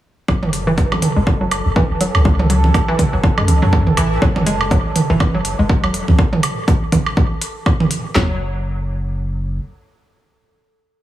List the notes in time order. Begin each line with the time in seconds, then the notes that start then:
0.28 F#1 F#3 A4, kick, high woodblock
0.43 mid tom
0.53 open hi-hat
0.67 E3
0.78 kick, open hi-hat
0.92 F#3, high conga, high woodblock
1.02 mid tom, open hi-hat
1.16 F#1 G#3
1.27 kick
1.41 F#3
1.51 open hi-hat, high woodblock
1.66 F#1
1.76 E3, kick, high conga
1.90 E1
2.01 F#3, open hi-hat
2.15 C#2, high woodblock
2.25 G#3, kick
2.39 mid tom
2.50 F#3, open hi-hat
2.64 high conga
2.74 kick, open hi-hat, high woodblock
2.88 E3
2.99 kick, mid tom, open hi-hat
3.13 F#1 F#3
3.24 kick
3.38 F#2 G#3, high woodblock
3.48 C#2, open hi-hat, high conga
3.62 F#2 F#3
3.73 kick
3.87 E1, mid tom
3.97 A1 E3, open hi-hat, high woodblock
4.22 F#1 F#3, kick
4.36 mid tom, high conga
4.46 G#3, open hi-hat
4.61 high woodblock
4.71 F#3, kick, open hi-hat
4.96 mid tom, open hi-hat
5.10 F#1 E3
5.20 kick, high conga, high woodblock
5.34 F#3
5.45 open hi-hat
5.59 F#1 G#3
5.69 kick
5.84 E1 F#3, high woodblock
5.94 open hi-hat
6.08 C#2, high conga
6.19 kick
6.33 mid tom
6.43 open hi-hat, high woodblock
6.68 kick, open hi-hat
6.92 kick, mid tom, open hi-hat, high conga
7.06 high woodblock
7.17 kick
7.42 open hi-hat
7.66 kick, high woodblock
7.80 mid tom, high conga
7.91 open hi-hat
8.15 F#1 F#3, snare, clap, floor tom